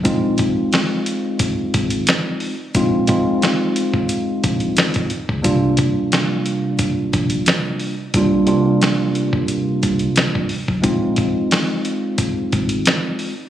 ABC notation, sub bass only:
X:1
M:4/4
L:1/16
Q:"Swing 16ths" 1/4=89
K:Bbmix
V:1 name="Sub bass" clef=bass
B,,,3 z6 z A,,,2 z4 | B,,,3 z6 z B,,,2 z3 _D,, | C,,3 z6 z B,,,2 z4 | C,,3 z6 z C,,2 z3 =B,,, |
B,,,3 z6 z A,,,2 z4 |]